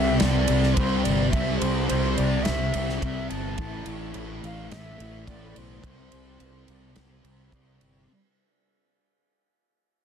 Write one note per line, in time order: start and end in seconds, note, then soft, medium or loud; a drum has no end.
0.00 0.18 C2 medium
0.00 0.19 C3 medium
0.00 0.21 G3 medium
0.00 0.24 C4 medium
0.00 0.20 E5 medium
0.19 0.46 C2 medium
0.19 0.75 C3 loud
0.19 0.51 G3 loud
0.19 0.75 D5 loud
0.19 snare loud
0.19 ride loud
0.25 0.49 C4 loud
0.48 0.74 C2 medium
0.48 0.79 C4 medium
0.48 ride medium
0.52 0.78 G3 medium
0.63 snare soft
0.74 1.02 C2 loud
0.74 1.30 C3 medium
0.74 1.05 C5 medium
0.74 kick medium
0.74 ride loud
0.79 1.32 G3 medium
0.79 1.35 C4 medium
1.04 1.31 G1 medium
1.04 1.30 D5 medium
1.04 ride medium
1.30 1.58 C2 loud
1.30 1.87 C3 loud
1.30 1.89 G3 loud
1.30 1.59 E5 loud
1.30 kick loud
1.30 ride loud
1.35 1.91 C4 loud
1.58 1.86 C2 loud
1.58 1.87 C5 loud
1.58 ride medium
1.88 2.15 C2 medium
1.88 2.44 C3 medium
1.88 2.46 G3 medium
1.88 2.49 C4 medium
1.88 2.18 C5 medium
1.88 ride loud
2.17 2.43 C2 medium
2.17 2.45 D5 loud
2.17 ride medium
2.43 2.99 C3 loud
2.43 2.76 G3 loud
2.43 3.01 E5 loud
2.43 snare loud
2.43 ride loud
2.48 2.72 C2 loud
2.48 2.73 C4 loud
2.74 2.99 C2 loud
2.74 3.01 G3 medium
2.74 3.04 C4 medium
2.74 ride medium
2.89 snare soft
3.00 3.27 C2 loud
3.00 3.56 C3 medium
3.00 3.56 G3 medium
3.00 3.60 C4 medium
3.00 3.31 E5 loud
3.00 kick medium
3.00 ride loud
3.29 3.56 G1 medium
3.29 4.15 A5 loud
3.29 ride medium
3.57 3.83 A1 loud
3.57 4.12 A2 loud
3.57 4.15 E3 loud
3.57 4.16 A3 loud
3.57 kick loud
3.57 ride loud
3.86 4.11 A1 loud
3.86 ride medium
4.14 4.40 A1 medium
4.14 4.70 A2 medium
4.14 4.72 E3 medium
4.14 4.73 A3 medium
4.14 ride loud
4.44 4.68 A1 loud
4.44 4.70 F5 loud
4.44 ride medium
4.71 4.96 A1 loud
4.71 5.25 A2 loud
4.71 5.02 E3 loud
4.71 4.96 A3 loud
4.71 5.29 E5 loud
4.71 snare loud
4.71 ride loud
4.98 5.25 A1 medium
4.98 5.30 A3 medium
4.98 ride medium
5.02 5.28 E3 medium
5.27 5.52 A1 loud
5.27 5.81 A2 medium
5.27 5.83 E3 medium
5.27 5.60 D5 loud
5.27 kick medium
5.27 ride loud
5.31 5.83 A3 medium
5.56 5.81 B1 loud
5.56 7.54 C5 loud
5.56 ride medium
5.82 6.08 C2 loud
5.82 6.38 C3 loud
5.82 6.40 G3 loud
5.82 6.41 C4 loud
5.82 kick loud
5.82 ride loud
6.12 6.37 C2 medium
6.12 ride medium
6.39 6.65 C2 medium
6.39 6.94 C3 medium
6.39 6.96 G3 medium
6.39 6.98 C4 loud
6.39 ride loud
6.68 6.93 C2 medium
6.68 ride medium
6.96 7.21 C2 loud
6.96 7.50 C3 loud
6.96 7.26 G3 loud
6.96 7.23 C4 loud
6.96 snare loud
6.96 ride loud
7.24 7.49 C2 medium
7.24 7.52 G3 medium
7.24 7.53 C4 medium
7.24 ride medium
7.51 7.77 C2 loud
7.51 8.06 C3 medium
7.51 8.07 G3 medium
7.51 8.08 C4 medium
7.51 kick medium
7.51 ride loud
7.81 8.06 G1 medium
7.81 ride medium